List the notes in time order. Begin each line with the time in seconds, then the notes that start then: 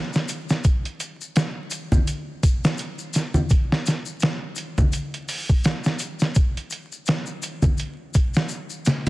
0.13 snare, maracas
0.29 closed hi-hat, maracas
0.49 snare, maracas
0.64 kick, closed hi-hat, maracas
0.85 closed hi-hat
1.00 closed hi-hat, maracas
1.21 maracas
1.36 snare, closed hi-hat, maracas
1.71 closed hi-hat, maracas
1.92 kick, low conga, maracas
2.07 closed hi-hat, maracas
2.43 kick, closed hi-hat, maracas
2.64 snare, maracas
2.78 closed hi-hat, maracas
2.99 maracas
3.14 snare, closed hi-hat, maracas
3.34 low conga, maracas
3.50 kick, closed hi-hat, maracas
3.72 snare
3.86 snare, closed hi-hat, maracas
4.05 maracas
4.20 snare, closed hi-hat, maracas
4.56 closed hi-hat, maracas
4.78 kick, low conga, maracas
4.93 closed hi-hat, maracas
5.14 closed hi-hat
5.29 open hi-hat, maracas
5.49 kick, maracas
5.64 snare, closed hi-hat, maracas
5.84 snare, maracas
5.99 closed hi-hat, maracas
6.19 snare, maracas
6.35 kick, closed hi-hat, maracas
6.57 closed hi-hat
6.70 closed hi-hat, maracas
6.92 maracas
7.06 snare, closed hi-hat, maracas
7.26 maracas
7.42 closed hi-hat, maracas
7.62 kick, low conga, maracas
7.78 closed hi-hat, maracas
8.14 kick, closed hi-hat, maracas
8.34 snare, maracas
8.49 maracas
8.70 maracas
8.86 snare, closed hi-hat, maracas